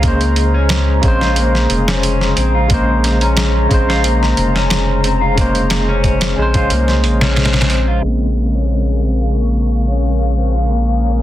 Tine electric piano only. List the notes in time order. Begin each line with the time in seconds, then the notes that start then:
Already playing: C#3 G#3 C5
0.02 C#3 G#3
0.08 C5
1.02 C#3 G#3
1.08 C5
2.68 C#3 G#3
2.74 C5
3.69 C#3 G#3
3.74 C5
5.35 C#3 G#3
5.41 C5
6.36 G#3 C#4
6.42 C5
8.02 C#3 G#3
8.08 C4